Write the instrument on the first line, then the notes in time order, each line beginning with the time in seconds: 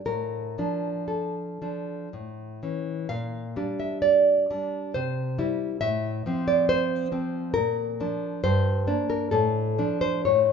nylon-string guitar
0.06 A2 A#4
0.58 F3 D4
1.08 A4
1.62 F3 D4
2.13 A2
2.63 E3 C#4
3.09 A#2 F5
3.56 G3 D4
3.80 E5
4.02 D5
4.50 G3 D4
4.94 C3 C5
5.39 G3 E4
5.81 A2 E5
6.26 F3 C4
6.48 D5
6.69 C5
7.12 F3 C4
7.54 A#2 A#4
8.00 F3 D4
8.44 G2 C5
8.87 A#3 D4
9.10 A#4
9.31 A2 A4
9.78 F3 D4
10.01 C5
10.25 A2 C#5